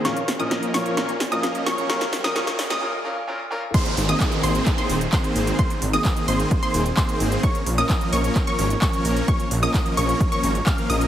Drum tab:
CC |----------------|----------------|x---------------|----------------|
HH |xxoxxxoxxxoxxxox|xxoxxxox--------|xxoxxxoxxxoxxxox|xxoxxxoxxxoxxxox|
CP |----------------|----------------|----x---x---x---|----x-------x---|
SD |o-o-o-o-o-o-o-o-|oooooooo--------|----------------|----------------|
BD |----------------|----------------|o---o---o---o---|o---o---o---o---|

CC |----------------|----------------|
HH |xxoxxxoxxxoxxxox|xxoxxxoxxxoxxxox|
CP |----x---x---x---|----x-------x---|
SD |----------------|----------------|
BD |o---o---o---o---|o---o---o---o---|